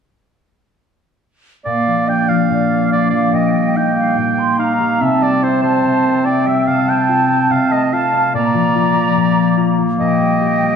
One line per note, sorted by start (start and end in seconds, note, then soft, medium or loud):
1.65 2.49 A#2 soft
1.65 5.02 A#3 soft
1.65 2.10 D5 soft
1.65 2.05 F5 soft
1.87 2.28 F3 soft
2.06 2.90 D4 soft
2.06 2.49 D5 soft
2.06 2.30 G5 soft
2.29 3.11 F3 soft
2.29 2.91 F5 soft
2.50 3.31 A#2 soft
2.50 2.91 D5 soft
2.70 4.36 A#3 soft
2.91 3.35 D4 soft
2.91 3.10 D5 soft
2.91 3.33 F5 soft
3.10 3.35 F3 soft
3.10 3.36 D5 soft
3.32 4.16 A#2 soft
3.32 3.78 D#5 soft
3.32 3.76 G5 soft
3.54 3.95 G3 soft
3.75 4.57 D#4 soft
3.75 3.96 D#5 soft
3.75 4.59 G5 soft
3.95 4.79 G3 soft
3.95 4.17 F5 soft
4.17 5.03 A#2 soft
4.17 4.39 G5 soft
4.37 6.04 A#3 soft
4.37 4.60 C6 soft
4.58 5.02 D#4 soft
4.58 5.03 F5 soft
4.58 5.01 A#5 soft
4.80 5.21 G3 soft
5.01 5.83 C3 soft
5.01 8.16 C4 soft
5.01 5.24 E5 soft
5.01 6.27 A5 soft
5.22 5.62 G3 soft
5.22 5.45 D5 soft
5.43 6.24 E4 soft
5.43 5.62 C5 soft
5.62 6.46 G3 soft
5.62 6.27 C5 soft
5.84 6.66 C3 soft
6.05 6.69 A#3 soft
6.25 6.69 E4 soft
6.25 6.48 D5 soft
6.25 6.68 G5 soft
6.46 6.69 G3 soft
6.46 6.69 E5 soft
6.67 7.49 C3 soft
6.67 6.91 F5 soft
6.67 7.90 A5 soft
6.87 7.28 C4 soft
6.87 7.53 G5 soft
7.09 7.91 F4 soft
7.29 8.12 C4 soft
7.50 8.35 C3 soft
7.50 7.74 F5 soft
7.71 8.35 A3 soft
7.71 7.95 D#5 soft
7.92 8.74 F4 soft
7.92 8.34 F5 soft
7.92 8.33 A5 soft
8.13 8.35 C4 soft
8.33 9.15 A#2 soft
8.33 10.76 A#3 medium
8.33 9.83 D5 soft
8.33 9.77 A#5 medium
8.54 8.94 F3 soft
8.75 9.56 F4 soft
8.96 9.77 F3 soft
9.16 9.98 A#2 soft
9.38 10.76 A#3 soft
9.57 10.01 F4 soft
9.78 10.01 F3 soft
10.00 10.76 A#2 medium
10.00 10.76 D#5 medium
10.00 10.76 G5 medium
10.20 10.61 G3 soft
10.41 10.76 G4 soft
10.62 10.76 G3 soft